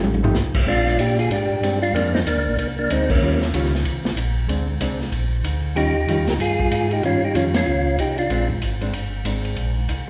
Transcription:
Already playing: hollow-body jazz guitar F3 A3 D#4 G4
0.03 tonewheel organ A1, high tom
0.14 high tom
0.23 hollow-body jazz guitar F3 A3 D#4 G4, floor tom
0.34 tonewheel organ C2, snare, hi-hat pedal
0.54 kick, crash
0.66 tonewheel organ A#1 D4 F4, hollow-body jazz guitar G#3 C4 D4
0.87 snare
0.98 tonewheel organ A#2 D4 G4, hi-hat pedal, ride
1.19 tonewheel organ F4 G#4, ride
1.30 tonewheel organ G#2 D4 G4, ride
1.49 tonewheel organ G#2
1.61 tonewheel organ G2, hollow-body jazz guitar G#3 C4 D4, hi-hat pedal, ride
1.82 tonewheel organ D4 F4, ride
1.93 tonewheel organ F2 A#3 D4, hollow-body jazz guitar G#3 C4 D4, ride
2.14 tonewheel organ C4 D#4, snare
2.25 tonewheel organ D#2 A#3 D4, hi-hat pedal, ride
2.37 tonewheel organ D2
2.47 tonewheel organ A#1
2.57 tonewheel organ C2 A#3 D4, ride
2.79 tonewheel organ A#3 D4
2.90 tonewheel organ D2 C4 D#4, hollow-body jazz guitar G#3 C4 D4, hi-hat pedal, ride
3.10 tonewheel organ A#3 C#4, kick, crash
3.22 tonewheel organ D#2, hollow-body jazz guitar D#3 G3 C#4 F4
3.42 snare
3.54 tonewheel organ C#2, hollow-body jazz guitar D#3 G3 C#4 F4, hi-hat pedal, ride
3.64 snare
3.75 snare
3.84 tonewheel organ C2, ride
4.04 tonewheel organ C2, snare
4.16 tonewheel organ A#1, hi-hat pedal, ride
4.47 tonewheel organ D2, hollow-body jazz guitar G#3 C4 D4, ride
4.80 tonewheel organ C2, hollow-body jazz guitar G#3 C4 D4, hi-hat pedal, ride
5.00 snare
5.12 tonewheel organ A#1, ride
5.43 tonewheel organ D2, hi-hat pedal, ride
5.75 tonewheel organ D#2 D#4 G4, hollow-body jazz guitar D#3 G3 C#4 F4, ride
6.07 tonewheel organ F2, hollow-body jazz guitar D#3 G3 C#4 F4, hi-hat pedal, ride
6.18 tonewheel organ D#2
6.27 tonewheel organ C#2 G4 A#4, snare, ride
6.39 tonewheel organ G2 F4 G#4, ride
6.59 kick
6.71 tonewheel organ G#2, hi-hat pedal, ride
6.91 tonewheel organ D#4 G4, ride
7.03 tonewheel organ G2 C#4 F4, hollow-body jazz guitar D#3 G3 C#4 F4, ride
7.24 tonewheel organ D#4 G4
7.34 tonewheel organ F2 C#4 F4, hollow-body jazz guitar D#3 G3 C#4 F4, hi-hat pedal, ride
7.54 tonewheel organ C#4 F4, snare, ride
7.67 tonewheel organ C#2
7.98 tonewheel organ C2 D#4 G4, hi-hat pedal, ride
8.18 tonewheel organ D4 F4, ride
8.30 tonewheel organ A#1, hollow-body jazz guitar G#3 C4 D4, ride
8.50 kick
8.62 tonewheel organ G#1, hi-hat pedal, ride
8.81 hollow-body jazz guitar G#3 C4 D4, ride
8.93 tonewheel organ G1, ride
9.24 tonewheel organ G#1, hollow-body jazz guitar G#3 C4 D4, hi-hat pedal, ride
9.45 ride
9.56 tonewheel organ A#1, ride
9.88 tonewheel organ C2, hi-hat pedal, ride

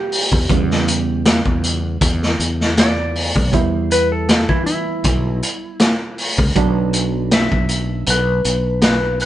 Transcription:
Already playing: reed electric piano G3 B3 E4, electric slide guitar G4
0.12 open hi-hat
0.32 fretless electric bass E2, kick
0.49 fretless electric bass E2, reed electric piano C#3 G3 B3, kick, closed hi-hat
0.70 snare
0.88 closed hi-hat
1.25 snare, closed hi-hat
1.46 fretless electric bass E2, kick
1.63 closed hi-hat
2.01 fretless electric bass E2, kick, closed hi-hat
2.22 snare
2.39 fretless electric bass E2, closed hi-hat
2.60 snare
2.77 electric slide guitar D5, snare, closed hi-hat
3.15 open hi-hat
3.36 fretless electric bass B1, kick
3.52 fretless electric bass E2, reed electric piano G3 B3 E4, kick, closed hi-hat
3.56 electric slide guitar C5
3.91 electric slide guitar B4, closed hi-hat
4.12 electric slide guitar A4
4.29 snare, closed hi-hat
4.49 fretless electric bass E3, electric slide guitar E4, kick
4.66 electric slide guitar E4, closed hi-hat
5.04 fretless electric bass B1, kick, closed hi-hat
5.42 closed hi-hat
5.79 snare, closed hi-hat
6.18 open hi-hat
6.38 fretless electric bass C#2, kick
6.55 fretless electric bass B1, reed electric piano F#3 B3 D4, kick, closed hi-hat
6.93 closed hi-hat
7.31 electric slide guitar E5, snare, closed hi-hat
7.52 fretless electric bass B1, kick
7.69 closed hi-hat
8.06 fretless electric bass B1, electric slide guitar B4, closed hi-hat
8.44 fretless electric bass B1, closed hi-hat
8.81 electric slide guitar B4, snare, closed hi-hat
9.20 electric slide guitar B4, open hi-hat

